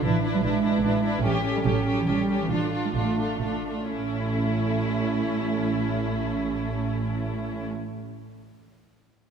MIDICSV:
0, 0, Header, 1, 6, 480
1, 0, Start_track
1, 0, Key_signature, 3, "major"
1, 0, Tempo, 406780
1, 34, Time_signature, 3, 2, 24, 8
1, 1955, Tempo, 433213
1, 3395, Tempo, 495868
1, 9538, End_track
2, 0, Start_track
2, 0, Title_t, "Violin section"
2, 0, Program_c, 0, 48
2, 51, Note_on_c, 0, 71, 42
2, 277, Note_off_c, 0, 71, 0
2, 290, Note_on_c, 0, 71, 43
2, 504, Note_off_c, 0, 71, 0
2, 518, Note_on_c, 0, 71, 47
2, 744, Note_off_c, 0, 71, 0
2, 758, Note_on_c, 0, 71, 45
2, 982, Note_off_c, 0, 71, 0
2, 997, Note_on_c, 0, 71, 47
2, 1225, Note_off_c, 0, 71, 0
2, 1243, Note_on_c, 0, 71, 44
2, 1471, Note_off_c, 0, 71, 0
2, 1471, Note_on_c, 0, 69, 46
2, 1688, Note_off_c, 0, 69, 0
2, 1703, Note_on_c, 0, 69, 48
2, 1947, Note_off_c, 0, 69, 0
2, 1964, Note_on_c, 0, 69, 47
2, 2183, Note_off_c, 0, 69, 0
2, 2197, Note_on_c, 0, 69, 45
2, 2424, Note_off_c, 0, 69, 0
2, 2436, Note_on_c, 0, 69, 43
2, 2660, Note_off_c, 0, 69, 0
2, 2674, Note_on_c, 0, 69, 36
2, 2903, Note_off_c, 0, 69, 0
2, 2915, Note_on_c, 0, 69, 41
2, 3136, Note_off_c, 0, 69, 0
2, 3150, Note_on_c, 0, 69, 36
2, 3393, Note_off_c, 0, 69, 0
2, 3414, Note_on_c, 0, 69, 37
2, 3626, Note_off_c, 0, 69, 0
2, 3645, Note_on_c, 0, 69, 34
2, 3861, Note_off_c, 0, 69, 0
2, 3875, Note_on_c, 0, 69, 34
2, 4101, Note_off_c, 0, 69, 0
2, 4122, Note_on_c, 0, 69, 26
2, 4348, Note_off_c, 0, 69, 0
2, 4359, Note_on_c, 0, 69, 35
2, 7970, Note_off_c, 0, 69, 0
2, 9538, End_track
3, 0, Start_track
3, 0, Title_t, "Violin section"
3, 0, Program_c, 1, 48
3, 40, Note_on_c, 1, 64, 46
3, 271, Note_off_c, 1, 64, 0
3, 287, Note_on_c, 1, 64, 42
3, 506, Note_off_c, 1, 64, 0
3, 520, Note_on_c, 1, 64, 45
3, 732, Note_off_c, 1, 64, 0
3, 746, Note_on_c, 1, 64, 44
3, 981, Note_off_c, 1, 64, 0
3, 997, Note_on_c, 1, 64, 38
3, 1200, Note_off_c, 1, 64, 0
3, 1214, Note_on_c, 1, 64, 46
3, 1455, Note_off_c, 1, 64, 0
3, 1457, Note_on_c, 1, 67, 54
3, 1687, Note_off_c, 1, 67, 0
3, 1701, Note_on_c, 1, 67, 44
3, 1918, Note_off_c, 1, 67, 0
3, 1932, Note_on_c, 1, 67, 42
3, 2173, Note_off_c, 1, 67, 0
3, 2186, Note_on_c, 1, 67, 46
3, 2407, Note_off_c, 1, 67, 0
3, 2420, Note_on_c, 1, 67, 35
3, 2656, Note_off_c, 1, 67, 0
3, 2674, Note_on_c, 1, 67, 40
3, 2903, Note_off_c, 1, 67, 0
3, 2903, Note_on_c, 1, 65, 46
3, 3128, Note_off_c, 1, 65, 0
3, 3142, Note_on_c, 1, 65, 38
3, 3377, Note_off_c, 1, 65, 0
3, 3390, Note_on_c, 1, 65, 40
3, 3606, Note_off_c, 1, 65, 0
3, 3617, Note_on_c, 1, 65, 34
3, 3834, Note_off_c, 1, 65, 0
3, 3846, Note_on_c, 1, 65, 28
3, 4087, Note_off_c, 1, 65, 0
3, 4101, Note_on_c, 1, 65, 26
3, 4338, Note_off_c, 1, 65, 0
3, 4348, Note_on_c, 1, 64, 42
3, 7964, Note_off_c, 1, 64, 0
3, 9538, End_track
4, 0, Start_track
4, 0, Title_t, "Viola section"
4, 0, Program_c, 2, 48
4, 39, Note_on_c, 2, 62, 47
4, 254, Note_off_c, 2, 62, 0
4, 268, Note_on_c, 2, 62, 43
4, 494, Note_off_c, 2, 62, 0
4, 509, Note_on_c, 2, 62, 43
4, 723, Note_off_c, 2, 62, 0
4, 737, Note_on_c, 2, 62, 42
4, 962, Note_off_c, 2, 62, 0
4, 976, Note_on_c, 2, 62, 41
4, 1207, Note_off_c, 2, 62, 0
4, 1221, Note_on_c, 2, 62, 46
4, 1458, Note_on_c, 2, 61, 49
4, 1459, Note_off_c, 2, 62, 0
4, 1682, Note_off_c, 2, 61, 0
4, 1696, Note_on_c, 2, 61, 46
4, 1936, Note_off_c, 2, 61, 0
4, 1950, Note_on_c, 2, 61, 42
4, 2167, Note_off_c, 2, 61, 0
4, 2180, Note_on_c, 2, 61, 42
4, 2407, Note_off_c, 2, 61, 0
4, 2420, Note_on_c, 2, 61, 42
4, 2647, Note_off_c, 2, 61, 0
4, 2660, Note_on_c, 2, 61, 41
4, 2893, Note_on_c, 2, 62, 43
4, 2896, Note_off_c, 2, 61, 0
4, 3132, Note_off_c, 2, 62, 0
4, 3145, Note_on_c, 2, 62, 38
4, 3381, Note_off_c, 2, 62, 0
4, 3395, Note_on_c, 2, 62, 37
4, 3609, Note_off_c, 2, 62, 0
4, 3621, Note_on_c, 2, 62, 33
4, 3841, Note_off_c, 2, 62, 0
4, 3852, Note_on_c, 2, 62, 28
4, 4090, Note_off_c, 2, 62, 0
4, 4103, Note_on_c, 2, 62, 30
4, 4339, Note_off_c, 2, 62, 0
4, 4343, Note_on_c, 2, 61, 36
4, 7962, Note_off_c, 2, 61, 0
4, 9538, End_track
5, 0, Start_track
5, 0, Title_t, "Cello section"
5, 0, Program_c, 3, 48
5, 58, Note_on_c, 3, 52, 60
5, 152, Note_off_c, 3, 52, 0
5, 415, Note_on_c, 3, 54, 59
5, 459, Note_off_c, 3, 54, 0
5, 525, Note_on_c, 3, 56, 58
5, 1217, Note_off_c, 3, 56, 0
5, 1474, Note_on_c, 3, 52, 63
5, 1569, Note_off_c, 3, 52, 0
5, 1846, Note_on_c, 3, 55, 63
5, 1893, Note_off_c, 3, 55, 0
5, 1960, Note_on_c, 3, 54, 60
5, 2302, Note_off_c, 3, 54, 0
5, 2322, Note_on_c, 3, 52, 52
5, 2433, Note_off_c, 3, 52, 0
5, 2434, Note_on_c, 3, 55, 64
5, 2786, Note_off_c, 3, 55, 0
5, 2789, Note_on_c, 3, 52, 52
5, 2836, Note_off_c, 3, 52, 0
5, 2920, Note_on_c, 3, 53, 56
5, 3008, Note_off_c, 3, 53, 0
5, 3283, Note_on_c, 3, 56, 55
5, 3331, Note_off_c, 3, 56, 0
5, 3407, Note_on_c, 3, 57, 47
5, 4087, Note_off_c, 3, 57, 0
5, 4348, Note_on_c, 3, 57, 42
5, 7964, Note_off_c, 3, 57, 0
5, 9538, End_track
6, 0, Start_track
6, 0, Title_t, "Double bass section"
6, 0, Program_c, 4, 48
6, 36, Note_on_c, 4, 33, 59
6, 435, Note_off_c, 4, 33, 0
6, 518, Note_on_c, 4, 33, 60
6, 913, Note_off_c, 4, 33, 0
6, 988, Note_on_c, 4, 33, 64
6, 1388, Note_off_c, 4, 33, 0
6, 1460, Note_on_c, 4, 33, 66
6, 1872, Note_off_c, 4, 33, 0
6, 1958, Note_on_c, 4, 33, 63
6, 2350, Note_off_c, 4, 33, 0
6, 2419, Note_on_c, 4, 33, 56
6, 2821, Note_off_c, 4, 33, 0
6, 2895, Note_on_c, 4, 33, 59
6, 3311, Note_off_c, 4, 33, 0
6, 3391, Note_on_c, 4, 33, 52
6, 3775, Note_off_c, 4, 33, 0
6, 3843, Note_on_c, 4, 33, 40
6, 4255, Note_off_c, 4, 33, 0
6, 4336, Note_on_c, 4, 33, 40
6, 7958, Note_off_c, 4, 33, 0
6, 9538, End_track
0, 0, End_of_file